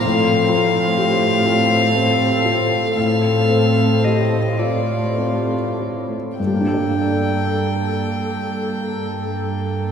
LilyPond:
<<
  \new Staff \with { instrumentName = "Violin" } { \time 6/8 \key g \minor \tempo 4. = 36 f''2. | f''4 ees''8 d''4 r8 | g''2. | }
  \new Staff \with { instrumentName = "Harp" } { \time 6/8 \key g \minor << { <a, f c' f' c'' f''>16 a16 c'16 f'16 g'16 c''16 f''16 c''16 g'16 f'16 c'16 a16 | a,16 c'16 a16 f'16 g'16 c''16 f''16 c''16 g'16 f'16 c'16 a16~ | a2. | } \\ { r2. | r2. | <g, g bes d' a' d''>2. | } >> }
  \new Staff \with { instrumentName = "Viola section" } { \time 6/8 \key g \minor << { f'4. a'4. | a'4. f'4. | a'2. | } \\ { c'2. | c'4. a4. | bes2. | } >> }
  \new Staff \with { instrumentName = "Felt piano" } { \time 6/8 \key g \minor a,8 f'8 g'8 f'8 c'8 f'8 | a,8 c'8 g'8 f'8 c'8 f'8 | <g, g bes d' a' d''>2. | }
  \new Staff \with { instrumentName = "Cello section" } { \clef bass \time 6/8 \key g \minor a,2. | a,2. | g,2. | }
>>